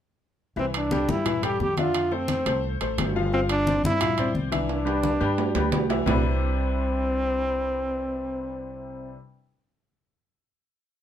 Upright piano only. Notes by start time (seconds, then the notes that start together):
0.57 E3 E4 E5
0.92 G3 G4 A4
1.25 E3 E4 E5
1.43 G3 G4 A4
1.78 D3 D4 E5
2.11 A3 A4 C5
2.46 A3 A4 C5
2.81 A3 A4 C5
3.16 F3 F4 F5
3.33 F3 F4 F5
3.67 C4 C5 D5
4.01 F3 F4 F5
4.18 C4 C5 D5
4.52 E3 E4 E5
4.85 G3 G4 B4
5.21 G3 G4 B4
5.55 G3 G4 B4
5.89 E3 E4 E5
6.06 C3 G3 C4 D4 E4 B4